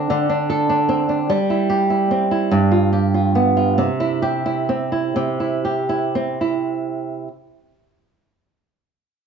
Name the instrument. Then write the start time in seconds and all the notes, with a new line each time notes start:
nylon-string guitar
Already playing: C4 D4 A4
0.10 D3
0.29 D4
0.50 A4
0.69 D4
0.89 C4
1.09 D4
1.30 G3
1.50 E4
1.70 G4
1.90 E4
2.11 C4
2.31 E4
2.51 G2
2.71 F4
2.93 G4
3.14 F4
3.35 B3
3.57 F4
3.78 C3
4.00 E4
4.22 G4
4.46 E4
4.69 C4
4.92 E4
5.16 C3
5.40 E4
5.65 G4
5.89 E4
6.15 C4
6.41 E4